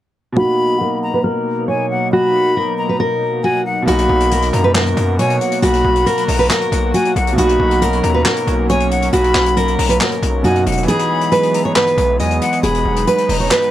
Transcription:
0.32 grand piano B2 A#3
0.37 analog synth pad B2 F#3 A#3 D#4, grand piano D#4, steel-string acoustic guitar F#4, flute B5
0.43 grand piano F#4
0.81 steel-string acoustic guitar A#4
1.03 flute A#5
1.14 steel-string acoustic guitar B4
1.24 steel-string acoustic guitar A#4
1.68 steel-string acoustic guitar C#5, flute G#5
1.90 flute F#5
2.12 steel-string acoustic guitar F#4, flute B5
2.57 steel-string acoustic guitar A#4
2.78 flute A#5
2.89 steel-string acoustic guitar B4
3.00 steel-string acoustic guitar A#4
3.44 steel-string acoustic guitar F#4, flute G#5
3.66 flute F#5
3.82 grand piano B2 A#3
3.87 808-style bass B1, analog synth pad B2 F#3 A#3 F#4, grand piano D#4, steel-string acoustic guitar F#4, flute B5, closed hi-hat
3.92 grand piano F#4
3.98 closed hi-hat
4.09 808-style bass B1
4.20 closed hi-hat
4.31 steel-string acoustic guitar A#4, closed hi-hat
4.42 closed hi-hat
4.53 808-style bass F#2, flute A#5, closed hi-hat
4.64 steel-string acoustic guitar B4
4.75 steel-string acoustic guitar A#4, snare, clap
4.86 closed hi-hat
4.97 808-style bass F#2, closed hi-hat
5.19 808-style bass B2, steel-string acoustic guitar C#5, flute G#5, closed hi-hat
5.30 closed hi-hat
5.41 flute F#5, closed hi-hat
5.52 closed hi-hat
5.62 808-style bass B1, steel-string acoustic guitar F#4, flute B5, closed hi-hat
5.74 closed hi-hat
5.84 808-style bass B1
5.95 closed hi-hat
6.06 steel-string acoustic guitar A#4, closed hi-hat
6.17 closed hi-hat
6.28 808-style bass B1, flute A#5, open hi-hat
6.39 steel-string acoustic guitar B4
6.50 steel-string acoustic guitar A#4, snare, clap, hi-hat pedal
6.61 closed hi-hat
6.72 808-style bass B1, closed hi-hat
6.94 steel-string acoustic guitar F#4, flute G#5, closed hi-hat
7.05 closed hi-hat
7.16 808-style bass B1, flute F#5, closed hi-hat
7.27 closed hi-hat
7.33 grand piano B2 A#3
7.38 808-style bass B1, analog synth pad C#4, grand piano D#4, steel-string acoustic guitar F#4, flute B5, closed hi-hat
7.43 grand piano F#4
7.49 closed hi-hat
7.60 808-style bass B1
7.71 closed hi-hat
7.82 steel-string acoustic guitar A#4, closed hi-hat
7.93 closed hi-hat
8.03 808-style bass D#2, flute A#5, closed hi-hat
8.14 steel-string acoustic guitar B4
8.25 steel-string acoustic guitar A#4, snare, clap
8.36 closed hi-hat
8.47 808-style bass B1, closed hi-hat
8.69 steel-string acoustic guitar C#5, flute G#5, closed hi-hat
8.80 closed hi-hat
8.91 flute F#5, closed hi-hat
9.02 closed hi-hat
9.13 808-style bass B1, steel-string acoustic guitar F#4, flute B5, closed hi-hat
9.24 closed hi-hat
9.35 808-style bass B1, snare, clap
9.46 closed hi-hat
9.57 steel-string acoustic guitar A#4, closed hi-hat
9.68 closed hi-hat
9.79 808-style bass B1, flute A#5, closed hi-hat, open hi-hat
9.89 steel-string acoustic guitar B4, closed hi-hat
10.01 steel-string acoustic guitar A#4, snare, clap
10.12 closed hi-hat
10.22 808-style bass B1, closed hi-hat
10.42 808-style bass F#2, grand piano B2 A#3 D#4, steel-string acoustic guitar F#4, flute G#5, closed hi-hat
10.47 grand piano F#4
10.55 closed hi-hat
10.66 808-style bass E1, flute F#5, closed hi-hat
10.72 closed hi-hat
10.77 closed hi-hat
10.83 grand piano E3 B3, closed hi-hat
10.88 analog synth pad E3 G#3 B3, grand piano D#4, steel-string acoustic guitar G#4, flute B5, closed hi-hat
10.93 grand piano G#4
10.99 closed hi-hat
11.21 closed hi-hat
11.32 steel-string acoustic guitar B4, closed hi-hat
11.43 closed hi-hat
11.54 flute A#5, closed hi-hat
11.65 steel-string acoustic guitar C#5
11.76 steel-string acoustic guitar B4, snare, clap
11.87 closed hi-hat
11.98 808-style bass B1, closed hi-hat
12.19 808-style bass E2, steel-string acoustic guitar D#5, flute G#5, closed hi-hat
12.30 closed hi-hat
12.41 flute F#5, closed hi-hat
12.52 closed hi-hat
12.63 808-style bass E1, analog synth pad D#4, steel-string acoustic guitar G#4, flute B5, closed hi-hat
12.74 closed hi-hat
12.85 808-style bass E1
12.96 closed hi-hat
13.07 steel-string acoustic guitar B4, closed hi-hat
13.18 closed hi-hat
13.29 808-style bass E1, flute A#5, open hi-hat
13.40 steel-string acoustic guitar C#5
13.51 steel-string acoustic guitar B4, snare, clap, hi-hat pedal
13.62 closed hi-hat

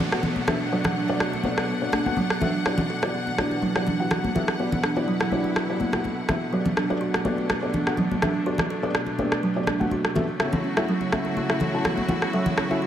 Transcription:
Already playing: string section B2 F#3 A3 D4 F#5, downlifter
0.00 kalimba A4, muted conga, low conga
0.12 felt piano B3 D4 F#4 A4 F#5, cross-stick
0.23 kalimba B3, muted conga, low conga
0.36 high conga
0.48 felt piano B3 D4 F#4 A4 E5, kalimba D4, cross-stick, muted conga, low conga
0.72 kalimba F#3, felt piano B3 D4 F#4 A4 D5
0.84 cross-stick, muted conga, low conga
0.96 kalimba D4
1.08 felt piano B3 D4 F#4 A4 D5, muted conga
1.20 kalimba F#4, cross-stick
1.33 muted conga
1.43 felt piano B3 D4 F#4 A4 D5, kalimba A4, high conga
1.58 cross-stick, muted conga
1.69 kalimba B3
1.82 felt piano B3 D4 F#4 A4 D5
1.93 kalimba D4, cross-stick, muted conga, high conga
2.06 felt piano B3 D4 F#4 A4 F#5, high conga
2.17 kalimba F#3, muted conga, high conga
2.30 cross-stick
2.41 felt piano B3 D4 F#4 A4 E5, kalimba D4, muted conga, high conga, low conga
2.66 string section B2 E3, felt piano B3 E4 F#4 G4 D5, kalimba F#4, cross-stick
2.78 muted conga, low conga
2.90 kalimba A4
3.02 felt piano B3 E4 F#4 G4 D5, cross-stick, muted conga
3.14 kalimba B3
3.27 muted conga
3.38 felt piano B3 E4 F#4 G4 D5, kalimba D4, cross-stick, high conga
3.51 muted conga
3.62 kalimba F#3, high conga
3.76 felt piano B3 E4 F#4 G4 D5, cross-stick
3.87 kalimba D4, muted conga, low conga
4.00 felt piano B3 E4 F#4 G4 F#5
4.11 kalimba F#4, cross-stick, muted conga, low conga
4.24 high conga
4.35 felt piano B3 E4 F#4 G4 E5, kalimba A4, muted conga, low conga
4.48 cross-stick
4.59 kalimba B3, felt piano B3 E4 F#4 G4 D5, string section E4
4.72 muted conga, low conga
4.84 kalimba D4, cross-stick
4.96 felt piano B3 E4 F#4 G4 D5, muted conga
5.08 kalimba F#3
5.20 cross-stick, muted conga
5.32 felt piano B3 E4 F#4 G4 D5, kalimba D4, high conga
5.44 muted conga
5.56 kalimba F#4, cross-stick
5.69 felt piano B3 E4 F#4 G4 D5
5.80 kalimba B3, muted conga, high conga
5.93 felt piano B3 E4 F#4 G4 F#5, cross-stick, high conga
6.04 kalimba A4, muted conga, high conga
6.29 kalimba B3, felt piano B3 E4 F#4 G4 E5, cross-stick, muted conga, high conga, low conga
6.53 kalimba F#3, string section A3 D4, felt piano B3 F#4 G4 A4 D5
6.65 muted conga, low conga
6.77 kalimba D4, cross-stick
6.90 felt piano B3 F#4 G4 A4 D5, muted conga
7.01 kalimba F#4
7.14 cross-stick, muted conga
7.25 felt piano B3 F#4 G4 A4 D5, kalimba A4, high conga
7.38 muted conga
7.49 kalimba B3, cross-stick, high conga
7.62 felt piano B3 F#4 G4 A4 D5
7.74 kalimba D4, muted conga, low conga
7.87 felt piano B3 F#4 G4 A4 F#5, cross-stick
7.97 kalimba F#3, muted conga, low conga
8.11 high conga
8.22 felt piano B3 F#4 G4 A4 E5, kalimba D4, cross-stick, muted conga, low conga
8.46 felt piano B3 F#4 G4 A4 D5, kalimba F#4
8.58 cross-stick, muted conga, low conga
8.70 kalimba A4
8.83 felt piano B3 F#4 G4 A4 D5, muted conga
8.95 kalimba B3, cross-stick
9.06 muted conga
9.19 felt piano B3 F#4 G4 A4 D5, kalimba D4, high conga
9.32 cross-stick, muted conga
9.43 kalimba F#3
9.56 felt piano B3 F#4 G4 A4 D5
9.67 kalimba D4, cross-stick, muted conga, high conga
9.80 felt piano B3 F#4 G4 A4 F#5, high conga
9.91 kalimba F#4, muted conga, high conga
10.05 cross-stick
10.15 felt piano B3 F#4 G4 A4 E5, kalimba A4, muted conga, high conga, low conga
10.40 string section C#3 F#3 E4 F#4, kalimba B3, felt piano C#4 E4 F#4 A4 E5, cross-stick
10.52 muted conga, low conga
10.64 kalimba C#4
10.77 felt piano C#4 E4 F#4 A4 E5, cross-stick, muted conga
10.89 kalimba F#3
11.01 muted conga
11.12 kalimba C#4, felt piano C#4 E4 F#4 A4 E5, cross-stick, high conga
11.25 muted conga
11.37 kalimba F#4, high conga
11.50 felt piano C#4 E4 F#4 A4 E5, cross-stick
11.60 kalimba A4, muted conga, low conga
11.74 felt piano C#4 E4 F#4 A4 A5
11.85 kalimba B3, cross-stick, muted conga, low conga
11.98 high conga
12.09 kalimba C#4, felt piano C#4 E4 F#4 A4 F#5, muted conga, low conga
12.22 cross-stick
12.33 kalimba F#3, felt piano C#4 E4 F#4 A4 E5
12.46 muted conga, low conga
12.57 kalimba C#4, cross-stick, high conga
12.70 felt piano C#4 E4 F#4 A4 E5, muted conga
12.82 kalimba F#4

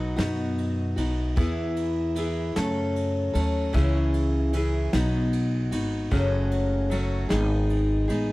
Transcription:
Already playing: upright bass B1, steel-string acoustic guitar F#3 B3 D#4 F#4
0.16 upright bass F#2, steel-string acoustic guitar B2 F#3 B3 D#4 F#4, snare, ride
0.58 ride
0.96 upright bass B1, steel-string acoustic guitar B3 D#4 F#4, ride
1.36 upright bass E2, steel-string acoustic guitar E3 B3 E4 G#4, kick, ride
1.76 ride
2.16 steel-string acoustic guitar E3 B3 E4 G#4, ride
2.56 upright bass F#2, steel-string acoustic guitar F#2 C#3 F#3 A3 C#4 A4, snare, ride
2.96 ride
3.33 upright bass D#2, steel-string acoustic guitar F#3 A3 C#4 A4, ride
3.73 upright bass C#2, steel-string acoustic guitar C#3 E3 C#4 E4 G#4, kick, ride
4.14 ride
4.53 steel-string acoustic guitar E3 C#4 E4 G#4, ride
4.93 upright bass B1, steel-string acoustic guitar B2 F#3 B3 D#4 F#4, snare, ride
5.33 ride
5.71 upright bass G#1, steel-string acoustic guitar B3 D#4 F#4, ride
6.11 upright bass F#1, steel-string acoustic guitar F#2 C#3 F#3 A3 C#4 F#4, kick, ride
6.51 ride
6.90 steel-string acoustic guitar F#3 A3 C#4 F#4, ride
7.29 upright bass G#1, steel-string acoustic guitar G#2 D#3 G#3 B3 D#4 G#4, snare, ride
7.70 ride
8.08 upright bass A1, steel-string acoustic guitar G#3 B3 D#4 G#4, ride

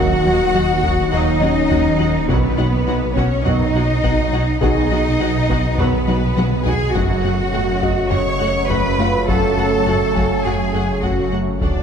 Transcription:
Already playing: sub bass D#1, analog synth bass D#2, double bass section D#2, synth arpeggio sound D#3, trombone section D#3 F#3, ambient pad F#3 A#3 F#4 D#5, french horn section A#3 F#4, felt piano D#4 D#5, cello section F#4, violin section F#5
0.25 analog synth bass D#2, synth arpeggio sound F#3, viola section F#3 F#4, violin section F#5
0.54 analog synth bass D#2, double bass section D#2, synth arpeggio sound F#3, viola section F#3 F#4, violin section F#5
0.83 analog synth bass D#2, synth arpeggio sound D#3, viola section F#3 F#4, violin section F#5, taiko
1.12 analog synth bass D#2, double bass section D#2, trombone section D#3 F#3, viola section F#3 F#4, french horn section A#3 F#4, cello section D#4, violin section D#5 F#5, taiko low-mid
1.41 analog synth bass D#2, synth arpeggio sound F#3, viola section F#3 F#4, felt piano C#4 C#5, violin section F#5
1.70 double bass section D#2, analog synth bass D#2, synth arpeggio sound D#3, viola section F#3 F#4, violin section F#5, taiko
1.99 analog synth bass D#2, viola section F#3 F#4, synth arpeggio sound F#3, violin section F#5
2.28 double bass section B1, sub bass B1, analog synth bass B2, trombone section D#3 F#3, viola section F#3 F#4, ambient pad F#3 B3 F#4 D#5, french horn section B3 F#4, cello section B3, synth arpeggio sound B3, violin section B4 F#5, taiko
2.57 analog synth bass B2, viola section F#3 F#4, synth arpeggio sound D#4, violin section F#5
2.87 double bass section B1, analog synth bass B2, viola section F#3 F#4, synth arpeggio sound D#4, violin section F#5
3.16 analog synth bass B2, viola section F#3 F#4, synth arpeggio sound B3, cello section C#4, violin section C#5 F#5, taiko
3.45 double bass section B1, analog synth bass B2, trombone section D#3 F#3, viola section F#3 F#4, french horn section B3 F#4, cello section D#4, violin section D#5 F#5, taiko low-mid
3.75 analog synth bass B2, viola section F#3 F#4, synth arpeggio sound D#4, violin section F#5
4.03 double bass section B1, analog synth bass B2, viola section F#3 F#4, synth arpeggio sound B3, violin section F#5, taiko
4.33 analog synth bass B2, viola section F#3 F#4, synth arpeggio sound D#4, violin section F#5
4.61 double bass section B1, analog synth bass B2, trombone section D#3 F#3, viola section F#3 F#4, french horn section B3 F#4, synth arpeggio sound B3, cello section D#4, felt piano G#4, violin section D#5 F#5, taiko
4.91 analog synth bass B2, viola section F#3 F#4, synth arpeggio sound D#4, violin section F#5
5.19 double bass section B1, analog synth bass B2, viola section F#3 F#4, synth arpeggio sound D#4, violin section F#5
5.49 analog synth bass B2, viola section F#3 F#4, synth arpeggio sound B3, violin section F#5, taiko
5.77 double bass section B1, analog synth bass B2, trombone section D#3 F#3, viola section F#3 F#4, french horn section B3 F#4, cello section B3, violin section B4 F#5, taiko low-mid
6.07 analog synth bass B2, viola section F#3 F#4, synth arpeggio sound D#4, violin section F#5, taiko high
6.37 double bass section B1, analog synth bass B2, viola section F#3 F#4, synth arpeggio sound B3, violin section F#5, taiko high
6.65 analog synth bass B2, viola section F#3 F#4, synth arpeggio sound D#4, cello section G#4, violin section F#5 G#5, taiko low
6.93 sub bass F#1, double bass section F#2, analog synth bass F#2, trombone section C#3 F#3, french horn section F#3 A3, ambient pad F#3 A3 C#4 C#5, synth arpeggio sound F#3, viola section A3 F#4, cello section F#4, violin section F#5, taiko
7.24 analog synth bass F#2, viola section A3 F#4, synth arpeggio sound A3, violin section F#5
7.53 double bass section F#2, analog synth bass F#2, viola section A3 F#4, synth arpeggio sound A3, violin section F#5
7.82 analog synth bass F#2, synth arpeggio sound F#3, viola section A3 F#4, felt piano D#5, violin section F#5, taiko
8.11 analog synth bass F#2, double bass section F#2, viola section A3 F#4, cello section C#5, violin section F#5 C#6, taiko low-mid
8.41 analog synth bass F#2, synth arpeggio sound A3, viola section A3 F#4, violin section F#5
8.69 double bass section F#2, analog synth bass F#2, synth arpeggio sound F#3, viola section A3 F#4, cello section B4, violin section F#5 B5, taiko
8.98 analog synth bass F#2, viola section A3 F#4, synth arpeggio sound A3, felt piano F4 F5, violin section F#5
9.28 analog synth bass F#2, double bass section F#2, synth arpeggio sound F#3, viola section A3 F#4, cello section A4, violin section F#5 A5, taiko
9.57 analog synth bass F#2, viola section A3 F#4, synth arpeggio sound A3, violin section F#5
9.86 analog synth bass F#2, double bass section F#2, viola section A3 F#4, synth arpeggio sound A3, violin section F#5
10.15 analog synth bass F#2, synth arpeggio sound F#3, viola section A3 F#4, violin section F#5, felt piano G#5, taiko
10.44 double bass section F#2, analog synth bass F#2, viola section A3 F#4, cello section G#4, violin section F#5 G#5
10.74 analog synth bass F#2, viola section A3 F#4, synth arpeggio sound A3, violin section F#5
11.03 double bass section F#2, analog synth bass F#2, synth arpeggio sound F#3, viola section A3 F#4, cello section F#4, violin section F#5, taiko
11.32 analog synth bass F#2, viola section A3 F#4, synth arpeggio sound A3, violin section F#5
11.61 sub bass D1, double bass section D2, analog synth bass D2, synth arpeggio sound D3, trombone section D3 F#3, viola section A3 F#4, french horn section A3 F#4, cello section D4, violin section D5 F#5, taiko

